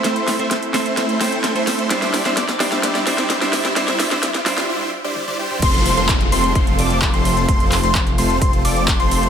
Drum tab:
CC |----------------|----------------|----------------|x---------------|
HH |xxoxxxoxxxoxxxox|xxoxxxoxxxoxxxox|xxoxxxox--------|xxoxxxoxxxoxxxox|
CP |----------------|----------------|----------------|----x-------x---|
SD |o-o-o-o-o-o-o-o-|oooooooooooooooo|oooooooo--------|----------------|
T1 |----------------|----------------|------------oo--|----------------|
T2 |----------------|----------------|---------------o|----------------|
BD |----------------|----------------|----------------|o---o---o---o---|

CC |----------------|
HH |xxoxxxoxxxoxxxox|
CP |--x-x-------x---|
SD |----------------|
T1 |----------------|
T2 |----------------|
BD |o---o---o---o---|